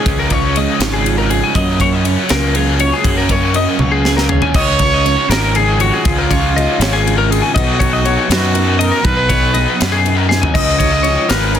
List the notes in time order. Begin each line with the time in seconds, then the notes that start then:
Already playing: F4 G#4
0.06 C#2 C#3 F3 G#3 C#4, kick, ride
0.19 A#4
0.30 F3 G#3 C#4 F4 C#5, kick, ride
0.56 C#3 F3 G#3 D#5, ride
0.60 C#4
0.80 G#1 G#3 C#4 D#4 C#5, snare, ride
0.84 C#3 F3
0.94 G#4
1.05 C#3 F3 G#3 F4, ride
1.10 C#4
1.18 A#4
1.29 G#4, ride
1.44 G#5
1.54 F#2 C#3 F#3 A#3 C#4 F4 A#4 D#5, kick, ride
1.80 F#3 A#3 C#4 A#4 C#5, kick, ride
1.93 D#5
2.04 C#3 F#3 A#3 C#4 C#5, ride
2.29 C#2 F#2 C#3 F#3 A#3 C#4 F4 A#4, snare, ride
2.54 C#3 F#3 A#3 C#4 G#4 A#4, ride
2.80 C#5, ride
2.93 G#4
3.04 F#2 C#3 F#3 A#3 C#4, kick, ride
3.18 A#4
3.29 F#3 A#3 C#4 A#4 C#5, kick, ride
3.54 C#3 F#3 A#3 C#4 D#5, ride
3.79 C#2 F#2 C#3 F#3 A#3 C#4 F4 C#5, high tom
3.92 G#4
4.05 C#3 F#3 A#3 C#4 G#4, snare
4.17 A#4, snare
4.29 G#4 C#5, floor tom
4.42 G#5, floor tom
4.54 C#2 C#3 F3 G#3 C#4 C#5 D#5, kick, crash
4.79 G#3 C#4 C#5, kick, ride
4.83 F3
4.94 D#5
5.04 C#3 F3 G#3 C#4 C#5, ride
5.29 G#1 C#3 F3 G#3 C#4 A#4, snare, ride
5.55 C#3 F3 G#3 C#4 G#4, ride
5.80 F#4 C#5, ride
5.94 G#4
6.05 C#2 C#3 F3 G#3 C#4 F4, kick, ride
6.18 A#4
6.30 F3 G#3 C#4 C#5, kick, ride
6.56 C#3 F3 G#3 C#4 D#5, ride
6.79 G#1 C#3 F3 G#3 C#4 C#5, snare, ride
6.93 G#4
7.05 C#3 F3 G#3 C#4, ride
7.18 A#4
7.31 G#4, ride
7.42 G#5
7.54 B1 B2 F#3 B3 D#4 F#4 D#5, kick, ride
7.79 F#3 B3 D#4 C#5, kick, ride
7.93 D#5
8.05 B2 F#3 B3 D#4 C#5, ride
8.29 F#2 B2 F#3 B3 D#4 F#4 B4, snare, ride
8.54 B2 F#3 B3 D#4 A#4, ride
8.79 A#4 D#5, ride
8.92 A#4
9.04 B1 B2 F#3 B3 D#4 B4, kick, ride
9.17 B4
9.29 F#3 B3 D#4 C#5, kick, ride
9.54 B2 F#3 B3 D#4 D#5, ride
9.80 F#2 B2 F#3 B3 D#4 B4, snare, ride
9.92 G#4
10.05 B2 F#3 B3 D#4, ride
10.17 A#4
10.29 G#4, snare
10.42 G#5, floor tom
10.54 C#2 C#3 F3 G#3 C#4 D#5, kick, crash
10.78 G#3 C#4 C#5, kick, ride
10.83 F3
10.92 D#5
11.03 C#3 C#5, ride
11.07 F3 G#3 C#4
11.29 G#1 F3 G#3 C#4 A#4 B4, snare, ride
11.34 C#3
11.54 C#3 G#4 A#4, ride